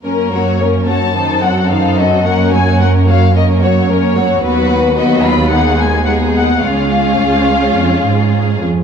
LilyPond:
<<
  \new Staff \with { instrumentName = "Violin section" } { \time 4/4 \key fis \major \tempo 4 = 109 ais'4 cis''8 a''4 fis''8 eis''8 dis''8 | fis''8 gis''8 fis''8 eis''8 dis''8 cis''8 cis''4 | b'4 dis''8 b''8 fis''8 gis''8 fis''8 fis''8 | eis''2.~ eis''8 r8 | }
  \new Staff \with { instrumentName = "Violin section" } { \time 4/4 \key fis \major << { ais'8 cis''8 ais'8 cis''8 c''8 a'8 c''8 a'8 | ais'8 cis''8 ais'8 cis''8 ais'8 cis''8 ais'8 cis''8 | b'4 b'4 gis'4 gis'4 | gis'2.~ gis'8 r8 | } \\ { ais'8 fis'8 ais'8 fis'8 a'8 fis'8 a'8 fis'8 | ais'8 fis'8 ais'8 fis'8 ais'8 fis'8 ais'8 fis'8 | fis'4 fis'8 eis'8 dis'4 dis'4 | eis'2.~ eis'8 r8 | } >> }
  \new Staff \with { instrumentName = "Viola section" } { \time 4/4 \key fis \major <ais cis'>8 <fis ais>8 <ais cis'>8 <fis ais>8 <dis dis'>8 <fis c'>8 <dis dis'>8 <fis c'>8 | <ais cis'>8 <fis ais>8 <ais cis'>8 <fis ais>8 <ais cis'>8 <fis ais>8 <ais cis'>8 <fis ais>8 | <fis b>4 <fis b>4 <gis b>4 <gis b>4 | <gis cis'>2.~ <gis cis'>8 r8 | }
  \new Staff \with { instrumentName = "Cello section" } { \clef bass \time 4/4 \key fis \major fis,1~ | fis,1 | dis,1 | cis,4 cis,4 eis,8 gis,4 eis,8 | }
>>